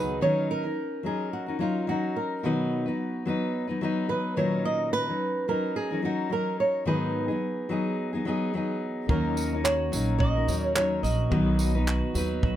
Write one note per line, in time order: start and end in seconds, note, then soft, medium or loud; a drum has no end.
0.00 0.19 C#2 medium
0.00 0.21 D#3 medium
0.00 0.20 F#3 medium
0.00 0.78 F#3 medium
0.00 0.21 B3 medium
0.00 0.28 B3 medium
0.00 0.22 D#4 medium
0.00 0.78 D#4 soft
0.00 0.78 F#4 medium
0.00 0.21 G#4 medium
0.00 0.22 G#4 medium
0.00 0.22 B4 medium
0.00 0.23 F#5 medium
0.21 0.64 D#3 medium
0.21 0.64 F#3 medium
0.21 0.65 C#4 medium
0.21 0.64 D#4 medium
0.21 0.62 A#4 medium
0.21 0.50 C#5 loud
0.51 1.07 A#4 loud
0.63 1.03 C#4 soft
0.63 1.04 D#4 soft
0.63 1.04 A#4 soft
1.03 1.47 F#3 medium
1.03 1.47 C#4 medium
1.03 1.47 D#4 medium
1.03 1.33 G#4 medium
1.03 1.45 A#4 medium
1.33 1.60 F#4 medium
1.46 1.59 C#4 soft
1.46 1.60 D#4 medium
1.46 1.59 A#4 soft
1.59 1.86 F#3 medium
1.59 1.87 C#4 medium
1.59 1.88 D#4 medium
1.59 1.88 F4 medium
1.59 1.89 A#4 medium
1.87 2.44 F#3 medium
1.87 2.43 C#4 medium
1.87 2.45 D#4 medium
1.87 2.17 F#4 loud
1.87 2.45 A#4 medium
2.16 2.44 A#4 medium
2.43 2.86 B2 medium
2.43 2.86 D#3 medium
2.43 2.87 F#3 medium
2.43 2.87 B3 medium
2.43 2.86 D#4 medium
2.43 3.50 F#4 medium
2.43 2.84 B4 medium
2.86 3.24 F#3 soft
2.86 3.26 B3 medium
2.86 3.27 D#4 soft
2.86 3.26 B4 soft
3.25 3.69 F#3 medium
3.25 3.68 B3 medium
3.25 3.68 D#4 medium
3.25 3.66 B4 medium
3.67 3.80 F#3 soft
3.67 3.81 B3 medium
3.67 3.81 D#4 medium
3.67 3.81 B4 medium
3.81 4.08 F#3 medium
3.81 4.09 B3 medium
3.81 4.10 D#4 medium
3.81 4.11 B4 medium
4.09 4.36 F#3 medium
4.09 4.37 B3 medium
4.09 4.37 D#4 medium
4.09 4.37 B4 loud
4.09 4.38 B4 medium
4.36 5.07 A#2 medium
4.36 5.12 D#3 medium
4.36 5.10 F#3 medium
4.36 5.08 C#4 medium
4.36 5.08 D#4 medium
4.36 5.09 A#4 medium
4.36 4.65 C#5 loud
4.65 4.93 D#5 loud
4.93 5.48 B4 loud
5.08 5.47 F#3 soft
5.08 5.47 C#4 soft
5.08 5.48 D#4 medium
5.48 5.91 F#3 medium
5.48 5.91 C#4 medium
5.48 5.91 D#4 medium
5.48 5.77 A#4 medium
5.48 5.89 A#4 medium
5.76 6.05 G#4 loud
5.91 6.01 F#3 soft
5.91 6.02 C#4 medium
5.91 6.03 D#4 soft
5.91 6.03 A#4 medium
6.02 6.28 F#3 medium
6.02 6.29 C#4 medium
6.02 6.31 D#4 medium
6.02 6.33 F#4 medium
6.02 6.32 A#4 medium
6.30 6.86 F#3 medium
6.30 6.86 C#4 medium
6.30 6.87 D#4 medium
6.30 6.60 A#4 loud
6.30 6.87 A#4 medium
6.60 6.87 C#5 medium
6.85 7.29 G#2 medium
6.85 7.29 D#3 medium
6.85 7.30 F#3 medium
6.85 7.29 B3 medium
6.85 7.28 D#4 medium
6.85 7.27 G#4 medium
6.85 7.94 B4 loud
7.28 7.68 F#3 soft
7.28 7.69 B3 soft
7.28 7.70 D#4 soft
7.28 7.69 G#4 medium
7.69 8.13 F#3 medium
7.69 8.13 B3 medium
7.69 8.13 D#4 medium
7.69 8.12 G#4 medium
8.13 8.24 F#3 medium
8.13 8.25 B3 medium
8.13 8.26 D#4 medium
8.13 8.26 G#4 medium
8.25 8.52 F#3 medium
8.25 8.54 B3 medium
8.25 8.55 D#4 medium
8.25 8.55 G#4 medium
8.54 9.09 F#3 medium
8.54 9.09 B3 medium
8.54 9.10 D#4 medium
8.54 9.11 G#4 medium
9.07 9.89 D#2 loud
9.07 9.52 D#3 medium
9.07 9.52 F#3 medium
9.07 11.27 A#3 medium
9.07 9.92 A#3 medium
9.07 9.53 C#4 medium
9.07 11.28 D#4 medium
9.07 9.53 D#4 medium
9.07 11.28 F#4 medium
9.07 9.64 A#4 medium
9.07 9.51 A#4 medium
9.07 11.29 C#5 medium
9.07 kick loud
9.37 10.75 C#4 medium
9.37 tambourine medium
9.53 9.92 C#4 soft
9.53 9.93 D#4 soft
9.53 9.93 A#4 medium
9.64 10.20 F#4 medium
9.64 10.18 C#5 medium
9.64 clap loud
9.92 10.44 A#1 loud
9.92 10.36 F#3 medium
9.92 10.47 A#3 medium
9.92 10.36 C#4 medium
9.92 10.36 D#4 medium
9.92 10.34 A#4 medium
9.92 tambourine medium
10.19 11.04 F#4 medium
10.19 10.65 D#5 loud
10.19 kick loud
10.35 10.48 C#4 soft
10.35 10.49 D#4 soft
10.35 10.48 A#4 medium
10.48 11.00 D#2 medium
10.48 10.74 F#3 medium
10.48 11.38 A#3 medium
10.48 10.75 C#4 medium
10.48 10.76 D#4 medium
10.48 10.77 A#4 medium
10.48 tambourine medium
10.65 10.75 C#5 loud
10.75 11.31 F#3 medium
10.75 11.38 C#4 medium
10.75 11.32 C#4 medium
10.75 11.32 D#4 medium
10.75 11.33 A#4 medium
10.75 11.03 C#5 loud
10.75 clap loud
11.03 11.29 A#1 loud
11.03 11.87 F#4 medium
11.03 11.55 D#5 medium
11.03 tambourine medium
11.30 11.99 B1 loud
11.30 11.75 B2 medium
11.30 11.75 D#3 medium
11.30 12.56 D#3 medium
11.30 11.75 F#3 medium
11.30 12.56 B3 medium
11.30 11.75 B3 medium
11.30 12.56 D#4 medium
11.30 11.75 D#4 medium
11.30 12.56 F#4 medium
11.30 11.74 B4 medium
11.30 12.56 D#5 medium
11.30 kick loud
11.59 12.56 D#4 medium
11.59 tambourine medium
11.75 12.13 F#3 soft
11.75 12.14 B3 soft
11.75 12.15 D#4 medium
11.75 12.16 B4 medium
11.88 12.43 F#4 medium
11.88 clap loud
12.14 12.41 D#2 medium
12.14 12.56 F#3 medium
12.14 12.56 B3 medium
12.14 12.56 D#4 medium
12.14 12.56 B4 medium
12.14 tambourine medium
12.43 12.56 B1 loud
12.43 12.56 F#4 medium
12.43 kick loud